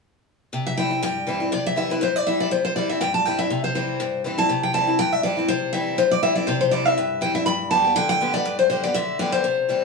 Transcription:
0.53 1.00 C3 medium
0.67 0.77 E5 medium
0.77 0.90 E3 medium
0.77 0.91 G3 medium
0.77 0.91 C4 medium
0.77 0.89 E4 medium
0.77 1.01 G5 medium
0.91 1.03 C4 soft
0.91 1.02 E4 medium
1.03 1.50 G2 medium
1.03 1.49 G5 medium
1.27 1.40 E3 medium
1.27 1.40 G3 medium
1.27 1.41 C4 medium
1.27 1.39 E4 medium
1.40 1.52 C4 soft
1.40 1.51 E4 medium
1.52 1.99 C3 medium
1.52 1.65 D5 medium
1.66 1.76 E5 medium
1.76 1.89 E3 medium
1.76 1.90 G3 medium
1.76 1.90 C4 medium
1.76 1.89 E4 medium
1.76 1.91 E5 medium
1.90 2.02 C4 soft
1.90 2.01 E4 medium
1.90 2.01 B4 medium
2.01 2.49 G2 medium
2.01 2.16 C5 medium
2.16 2.27 D5 medium
2.26 2.50 E3 medium
2.26 2.50 G3 medium
2.26 2.51 C4 medium
2.26 2.51 E4 medium
2.26 2.44 E5 medium
2.40 2.51 D5 medium
2.51 2.99 C3 medium
2.51 2.63 C5 medium
2.65 2.75 C5 medium
2.76 2.89 E3 medium
2.76 2.89 G3 medium
2.76 2.90 C4 medium
2.76 2.88 E4 medium
2.76 2.89 D5 medium
2.89 3.01 C4 soft
2.89 3.00 E4 medium
2.89 3.00 E5 medium
3.01 3.48 G2 medium
3.01 3.14 G5 medium
3.14 3.25 A5 medium
3.25 3.39 E3 medium
3.25 3.39 G3 medium
3.25 3.39 C4 medium
3.25 3.38 E4 medium
3.25 3.39 G5 medium
3.39 3.51 C4 soft
3.39 3.50 E4 medium
3.39 3.63 E5 medium
3.50 3.98 C3 medium
3.64 3.74 C5 medium
3.75 3.99 E3 medium
3.75 3.99 G3 medium
3.75 3.99 C4 medium
3.75 4.00 E4 medium
3.75 4.21 C5 medium
4.00 4.47 G2 medium
4.24 4.38 E3 medium
4.24 4.38 G3 medium
4.24 4.38 C4 medium
4.24 4.37 E4 medium
4.38 4.50 C4 soft
4.38 4.49 E4 medium
4.38 4.61 A5 loud
4.49 4.97 C3 medium
4.63 4.74 G5 medium
4.73 4.87 E3 medium
4.73 4.87 G3 medium
4.73 4.88 C4 medium
4.73 4.86 E4 medium
4.73 4.97 A5 medium
4.87 4.99 C4 soft
4.87 4.98 E4 medium
4.99 5.46 G2 medium
4.99 5.12 G5 loud
5.12 5.23 E5 medium
5.23 5.37 E3 medium
5.23 5.37 G3 medium
5.23 5.37 C4 medium
5.23 5.36 E4 medium
5.23 5.47 D5 medium
5.37 5.49 C4 medium
5.37 5.48 E4 medium
5.48 5.96 C3 medium
5.48 5.72 C5 medium
5.73 5.97 E3 medium
5.73 5.97 G3 medium
5.73 5.98 C4 medium
5.73 5.98 E4 medium
5.73 5.99 E5 medium
5.98 6.45 G2 medium
5.98 6.12 C5 medium
6.11 6.22 D5 medium
6.23 6.36 E3 medium
6.23 6.36 G3 medium
6.23 6.36 C4 medium
6.23 6.35 E4 medium
6.23 6.35 E5 medium
6.36 6.48 C4 soft
6.36 6.47 E4 medium
6.36 6.48 D5 medium
6.47 6.95 C3 medium
6.47 6.59 C5 medium
6.61 6.71 C5 medium
6.71 6.85 E3 medium
6.71 6.85 G3 medium
6.71 6.86 C4 medium
6.71 6.84 E4 medium
6.71 6.85 D5 medium
6.85 6.97 C4 soft
6.85 6.96 E4 soft
6.85 7.21 E5 medium
6.98 7.45 G2 medium
7.21 7.34 E3 medium
7.21 7.35 G3 medium
7.21 7.35 C4 medium
7.21 7.34 E4 medium
7.21 7.34 G5 loud
7.35 7.47 C4 soft
7.35 7.46 E4 medium
7.35 7.45 E5 loud
7.46 7.94 G2 medium
7.46 7.70 B5 loud
7.70 7.84 D3 medium
7.70 7.84 G3 soft
7.70 7.85 B3 medium
7.70 7.83 G4 medium
7.70 7.94 A5 medium
7.84 7.96 B3 soft
7.84 7.95 G4 medium
7.96 8.19 D3 medium
7.96 8.08 G5 loud
8.09 8.32 G5 loud
8.21 8.34 D3 medium
8.21 8.34 G3 medium
8.21 8.34 B3 medium
8.21 8.33 G4 medium
8.34 8.46 B3 medium
8.34 8.45 G4 medium
8.34 8.57 D5 loud
8.45 8.93 G2 medium
8.59 8.68 C5 medium
8.70 8.83 D3 medium
8.70 8.83 G3 medium
8.70 8.84 B3 medium
8.70 8.82 G4 medium
8.70 8.83 C5 medium
8.84 8.95 B3 medium
8.84 8.94 G4 medium
8.84 8.94 D5 medium
8.94 9.18 D3 medium
8.94 9.18 E5 loud
9.19 9.43 D3 medium
9.19 9.44 G3 medium
9.19 9.44 B3 medium
9.19 9.44 G4 medium
9.19 9.32 D5 medium
9.32 9.84 C5 medium
9.44 9.84 C3 medium
9.69 9.84 E3 soft
9.69 9.84 G3 medium
9.69 9.84 C4 medium
9.69 9.84 E4 medium

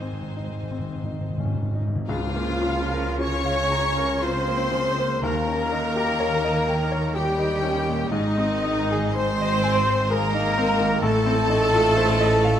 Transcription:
0.00 1.81 G#1 medium
0.00 1.82 G#2 soft
0.00 2.04 G#2 medium
0.00 0.11 G#2 soft
0.00 2.11 D#3 soft
0.00 0.57 C4 soft
0.00 0.22 D#4 soft
0.00 1.82 D#4 medium
0.00 1.00 C5 soft
0.00 1.52 C5 medium
0.00 1.82 C5 soft
0.00 1.01 D#5 soft
0.00 1.00 G#5 medium
0.12 0.20 G#2 soft
0.21 0.29 G#2 soft
0.30 0.38 G#2 soft
0.37 0.46 G#2 soft
0.37 0.91 D#4 soft
0.47 0.55 G#2 soft
0.56 0.61 G#2 soft
0.63 0.69 G#2 soft
0.71 0.78 G#2 medium
0.71 1.26 C4 soft
0.79 0.87 G#2 medium
0.88 0.94 G#2 medium
0.95 1.02 G#2 medium
1.03 1.10 G#2 medium
1.03 1.60 D#4 soft
1.12 1.19 G#2 medium
1.21 1.28 G#2 medium
1.30 1.36 G#2 medium
1.37 1.44 G#2 medium
1.37 1.74 C#4 soft
1.45 1.53 G#2 medium
1.55 1.61 G#2 medium
1.63 1.70 G#2 medium
1.71 1.79 G#2 medium
1.71 2.09 D#4 soft
1.80 1.86 G#2 medium
1.88 1.94 G#2 medium
1.96 2.03 G#2 medium
2.07 5.18 C#2 medium
2.07 5.19 C#2 medium
2.07 5.18 C#3 medium
2.07 3.16 F3 medium
2.07 3.16 F4 medium
2.07 3.17 F4 medium
2.07 3.21 F4 medium
2.07 3.16 F5 medium
2.07 3.17 F5 medium
2.07 tam-tam medium
2.36 2.81 A#3 medium
2.62 3.08 F4 medium
2.92 3.37 A#4 medium
3.19 4.22 C#4 loud
3.19 3.62 F4 medium
3.19 4.25 C#5 medium
3.19 4.23 C#5 loud
3.19 4.21 C#5 loud
3.19 4.23 C#5 loud
3.19 4.24 C#6 medium
3.19 4.23 C#6 loud
3.45 3.87 F5 medium
3.71 4.12 A#5 medium
3.97 4.37 A#4 medium
4.22 5.22 C4 medium
4.22 4.62 F4 medium
4.22 5.22 C5 loud
4.22 5.22 C5 medium
4.22 5.21 C5 medium
4.22 5.22 C6 loud
4.48 4.88 A#3 medium
4.72 5.12 C#3 medium
4.98 5.23 A#3 medium
5.21 8.07 D#2 medium
5.21 8.08 D#2 medium
5.21 8.07 D#3 medium
5.21 6.63 D#3 loud
5.21 7.10 A#3 loud
5.21 7.15 A#4 loud
5.21 7.14 A#4 loud
5.21 7.11 A#4 loud
5.21 7.16 A#5 loud
5.21 7.15 A#5 loud
5.47 5.86 C#4 medium
5.72 6.11 D#4 medium
5.96 6.34 G4 medium
6.20 6.58 C#5 medium
6.44 6.82 D#5 medium
6.68 7.05 G5 medium
6.92 7.29 C#5 medium
7.14 8.12 G3 medium
7.14 8.11 G4 medium
7.14 8.13 G4 medium
7.14 8.10 G4 medium
7.14 8.12 G4 medium
7.14 7.54 G4 medium
7.14 8.12 G5 loud
7.14 8.13 G5 loud
7.39 7.78 D#4 medium
7.63 8.02 C#4 medium
7.89 8.12 A#2 medium
8.10 10.98 G#1 medium
8.10 10.98 G#2 medium
8.10 8.97 D#3 medium
8.10 9.13 D#4 loud
8.10 9.15 D#4 medium
8.10 8.85 D#4 medium
8.10 9.14 D#4 loud
8.10 9.13 D#5 loud
8.10 8.85 D#5 medium
8.38 8.80 C4 medium
8.65 9.06 D#4 medium
8.91 9.31 G#4 medium
9.14 10.08 C4 loud
9.14 10.10 C5 loud
9.14 9.55 C5 medium
9.14 10.11 C5 loud
9.14 10.13 C5 loud
9.14 10.09 C5 loud
9.14 10.11 C6 loud
9.14 10.15 C6 loud
9.41 9.79 D#5 medium
9.64 10.01 G#5 medium
9.89 10.25 C5 medium
10.10 11.03 A#3 loud
10.10 10.47 G#4 medium
10.10 11.00 A#4 loud
10.10 11.02 A#4 loud
10.10 11.03 A#4 loud
10.10 11.01 A#5 loud
10.10 11.07 A#5 loud
10.34 10.70 D#4 medium
10.58 10.94 C4 medium
10.79 11.02 D#3 medium
11.02 12.60 A1 loud
11.02 12.60 A2 medium
11.02 12.60 A3 loud
11.02 12.60 A4 loud
11.02 12.60 A5 loud
11.26 11.64 C4 medium
11.50 11.88 D#4 medium
11.74 12.12 F4 medium
11.97 12.35 C5 medium
12.20 12.58 D#5 medium
12.44 12.60 F5 medium

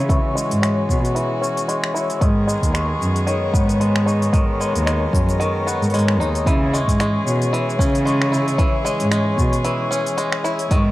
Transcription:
0.00 0.33 C#3 medium
0.00 2.18 E3 medium
0.00 0.35 G#3 medium
0.00 10.67 G#3 medium
0.00 1.40 C#4 soft
0.00 2.17 C#4 medium
0.00 1.93 E4 medium
0.00 0.61 C#5 medium
0.00 0.09 C#6 medium
0.09 1.14 E3 medium
0.09 2.20 F#4 medium
0.09 0.34 C#6 medium
0.09 kick loud
0.09 open hi-hat soft
0.09 shaker soft
0.35 0.62 G#3 medium
0.35 shaker medium
0.51 0.86 G#2 medium
0.51 open hi-hat medium
0.61 1.68 G#3 medium
0.61 0.87 C#5 medium
0.61 finger snap medium
0.61 open hi-hat soft
0.61 shaker soft
0.89 1.01 B2 medium
0.89 kick medium
0.89 shaker medium
1.05 open hi-hat soft
1.05 shaker soft
1.15 2.21 E3 medium
1.15 open hi-hat soft
1.15 shaker soft
1.42 2.27 C#4 medium
1.42 1.67 C#6 medium
1.42 shaker medium
1.57 open hi-hat soft
1.57 shaker soft
1.68 2.47 G#3 medium
1.68 open hi-hat soft
1.68 shaker soft
1.84 finger snap medium
1.94 2.27 E4 medium
1.94 2.21 C#5 medium
1.94 shaker medium
2.10 open hi-hat medium
2.10 shaker soft
2.21 2.59 G#2 medium
2.21 3.25 D#3 medium
2.21 6.43 D#3 medium
2.21 6.43 B3 medium
2.21 4.32 G#4 medium
2.21 kick loud
2.21 open hi-hat soft
2.21 shaker soft
2.47 2.73 G#3 medium
2.47 shaker medium
2.62 2.98 D#2 medium
2.62 kick soft
2.62 open hi-hat soft
2.62 shaker soft
2.74 3.80 G#3 medium
2.74 3.00 C#6 medium
2.74 finger snap medium
2.74 open hi-hat soft
2.74 shaker soft
3.01 3.14 F#2 medium
3.01 shaker medium
3.16 open hi-hat soft
3.16 shaker soft
3.27 4.32 D#3 medium
3.27 3.53 C#5 medium
3.27 open hi-hat soft
3.27 shaker soft
3.53 4.57 G#2 medium
3.53 5.66 B3 medium
3.53 kick medium
3.53 shaker medium
3.69 open hi-hat soft
3.69 shaker soft
3.80 4.60 G#3 medium
3.80 open hi-hat soft
3.80 shaker soft
3.96 finger snap medium
4.06 6.19 D#4 medium
4.06 4.33 C#6 medium
4.06 shaker medium
4.22 open hi-hat medium
4.22 shaker soft
4.33 5.39 D#3 medium
4.33 6.44 A#4 medium
4.33 kick loud
4.33 open hi-hat soft
4.33 shaker soft
4.60 4.86 G#3 medium
4.60 4.86 C#5 medium
4.60 shaker medium
4.75 5.10 D#2 medium
4.75 open hi-hat soft
4.75 shaker soft
4.86 5.93 G#3 medium
4.86 finger snap medium
4.86 open hi-hat soft
4.86 shaker soft
5.13 5.26 F#2 medium
5.13 kick loud
5.13 shaker medium
5.29 open hi-hat soft
5.29 shaker soft
5.40 6.46 D#3 medium
5.40 5.66 C#6 medium
5.40 open hi-hat soft
5.40 shaker soft
5.67 6.53 B3 medium
5.67 shaker medium
5.82 5.91 G#2 medium
5.82 open hi-hat soft
5.82 shaker soft
5.90 6.21 G#2 medium
5.90 6.73 G#3 medium
5.90 6.10 C#5 medium
5.90 open hi-hat soft
5.94 open hi-hat soft
5.94 shaker soft
5.99 open hi-hat soft
6.08 finger snap medium
6.19 6.32 D#2 medium
6.19 6.53 D#4 medium
6.19 shaker medium
6.35 open hi-hat soft
6.35 shaker soft
6.46 6.84 C#3 medium
6.46 7.52 E3 medium
6.46 10.68 E3 medium
6.46 10.67 C#4 medium
6.46 10.91 G#4 medium
6.46 kick loud
6.46 open hi-hat soft
6.46 shaker soft
6.73 7.00 G#3 medium
6.73 6.98 C#6 medium
6.73 shaker medium
6.88 7.23 G#2 medium
6.88 kick medium
6.88 open hi-hat medium
6.88 shaker soft
7.00 8.05 G#3 medium
7.00 finger snap medium
7.00 open hi-hat soft
7.00 shaker soft
7.25 7.38 B2 medium
7.25 7.51 C#5 medium
7.25 shaker medium
7.42 open hi-hat soft
7.42 shaker soft
7.53 8.57 E3 medium
7.53 open hi-hat soft
7.70 shaker soft
7.79 8.82 C#3 medium
7.79 9.89 C#4 medium
7.79 kick medium
7.79 shaker medium
7.95 open hi-hat soft
7.95 shaker soft
8.05 8.84 G#3 medium
8.05 8.31 C#6 medium
8.05 open hi-hat soft
8.05 shaker soft
8.22 finger snap medium
8.32 10.43 E4 medium
8.32 shaker medium
8.48 open hi-hat soft
8.48 shaker soft
8.57 9.63 E3 medium
8.57 8.84 C#5 medium
8.57 kick loud
8.57 open hi-hat soft
8.57 shaker soft
8.85 9.11 G#3 medium
8.85 shaker medium
9.00 9.35 G#2 medium
9.00 open hi-hat soft
9.00 shaker soft
9.11 10.17 G#3 medium
9.11 finger snap medium
9.11 open hi-hat soft
9.11 shaker soft
9.37 9.51 B2 medium
9.37 9.63 C#6 medium
9.37 kick medium
9.37 shaker medium
9.53 open hi-hat medium
9.53 shaker soft
9.64 10.71 E3 medium
9.64 open hi-hat soft
9.64 shaker soft
9.91 10.77 C#4 medium
9.91 10.17 C#5 medium
9.91 shaker medium
10.06 open hi-hat soft
10.06 shaker soft
10.17 10.91 G#3 medium
10.17 open hi-hat soft
10.17 shaker soft
10.32 finger snap medium
10.44 10.77 E4 medium
10.44 shaker medium
10.59 open hi-hat medium
10.59 shaker soft
10.70 10.91 G#2 medium
10.70 10.91 D#3 medium
10.70 10.91 G#3 medium
10.70 10.91 B3 medium
10.70 10.91 C#6 medium
10.70 kick loud
10.70 open hi-hat soft
10.70 shaker soft

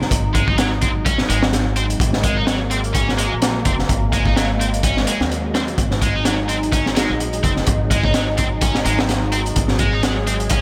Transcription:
0.00 10.61 F#3 medium
0.00 10.61 G#3 medium
0.00 1.99 D#4 medium
0.00 snare soft
0.11 1.26 G#1 medium
0.11 kick loud
0.11 closed hi-hat medium
0.35 0.47 G#3 medium
0.35 kick medium
0.35 closed hi-hat medium
0.47 0.55 D#4 medium
0.47 kick medium
0.58 0.67 F#3 medium
0.58 snare loud
0.58 closed hi-hat medium
0.81 0.87 C4 medium
0.81 kick medium
0.81 closed hi-hat medium
1.05 1.18 C#4 medium
1.05 kick loud
1.05 closed hi-hat medium
1.18 snare medium
1.29 1.97 G#1 medium
1.29 1.42 G#3 medium
1.29 closed hi-hat medium
1.43 snare loud
1.53 snare loud
1.53 closed hi-hat medium
1.76 1.82 C4 medium
1.76 closed hi-hat medium
1.90 closed hi-hat soft
2.00 3.27 G#1 loud
2.00 5.77 A#3 medium
2.00 kick loud
2.00 closed hi-hat medium
2.13 snare medium
2.23 2.36 G#3 medium
2.23 kick loud
2.23 closed hi-hat medium
2.37 2.44 D#4 medium
2.47 2.56 F#3 medium
2.47 snare loud
2.47 closed hi-hat medium
2.71 2.76 C4 medium
2.71 closed hi-hat medium
2.84 closed hi-hat soft
2.95 3.07 C#4 medium
2.95 kick loud
2.95 closed hi-hat medium
3.09 snare soft
3.18 3.31 G#3 medium
3.18 closed hi-hat medium
3.32 3.62 A#1 medium
3.42 snare loud
3.42 closed hi-hat medium
3.65 3.85 F#1 medium
3.65 3.71 C4 medium
3.65 kick medium
3.65 closed hi-hat medium
3.79 snare soft
3.89 5.04 G#1 medium
3.89 kick loud
3.89 closed hi-hat medium
4.12 4.25 G#3 medium
4.12 kick medium
4.12 closed hi-hat medium
4.26 4.33 D#4 medium
4.26 kick medium
4.36 4.45 F#3 medium
4.36 snare loud
4.36 closed hi-hat medium
4.60 4.65 C4 medium
4.60 closed hi-hat medium
4.74 closed hi-hat soft
4.83 4.96 C#4 medium
4.83 kick loud
4.83 closed hi-hat medium
4.97 snare soft
5.07 5.20 G#3 medium
5.07 closed hi-hat medium
5.20 5.75 D#2 medium
5.20 snare loud
5.31 closed hi-hat medium
5.55 5.60 C4 medium
5.55 snare loud
5.55 closed hi-hat medium
5.68 closed hi-hat soft
5.78 7.05 G#1 medium
5.78 9.55 D#4 medium
5.78 kick loud
5.78 closed hi-hat medium
5.91 snare soft
6.02 6.14 G#3 medium
6.02 kick medium
6.02 closed hi-hat medium
6.15 6.22 D#4 medium
6.25 6.34 F#3 medium
6.25 snare loud
6.25 closed hi-hat medium
6.49 6.54 C4 medium
6.49 closed hi-hat medium
6.63 closed hi-hat soft
6.72 6.85 C#4 medium
6.72 kick loud
6.72 closed hi-hat medium
6.86 snare soft
6.96 7.09 G#3 medium
6.96 snare loud
6.96 closed hi-hat medium
7.09 7.40 A#1 medium
7.20 closed hi-hat medium
7.33 closed hi-hat soft
7.43 7.63 F#1 medium
7.43 7.49 C4 medium
7.43 kick medium
7.43 closed hi-hat medium
7.57 snare soft
7.66 8.82 G#1 loud
7.66 kick loud
7.66 closed hi-hat medium
7.91 8.03 G#3 medium
7.91 kick medium
7.91 closed hi-hat medium
8.04 8.11 D#4 medium
8.04 kick medium
8.14 8.23 F#3 medium
8.14 snare loud
8.14 closed hi-hat medium
8.38 8.43 C4 medium
8.38 kick medium
8.38 closed hi-hat medium
8.61 8.74 C#4 medium
8.61 kick loud
8.61 closed hi-hat medium
8.75 snare soft
8.85 9.53 G#1 medium
8.85 8.98 G#3 medium
8.85 closed hi-hat medium
8.99 snare loud
9.09 snare loud
9.09 closed hi-hat medium
9.32 9.38 C4 medium
9.32 closed hi-hat medium
9.46 closed hi-hat soft
9.56 10.61 G#1 medium
9.56 10.61 G#4 medium
9.56 kick loud
9.56 closed hi-hat medium
9.68 snare medium
9.79 9.92 G#3 medium
9.79 kick medium
9.79 closed hi-hat medium
9.93 10.00 D#4 medium
10.03 10.12 F#3 medium
10.03 snare loud
10.03 closed hi-hat medium
10.27 10.32 C4 medium
10.27 closed hi-hat medium
10.40 closed hi-hat soft
10.49 10.61 C#4 medium
10.49 kick loud
10.49 closed hi-hat medium

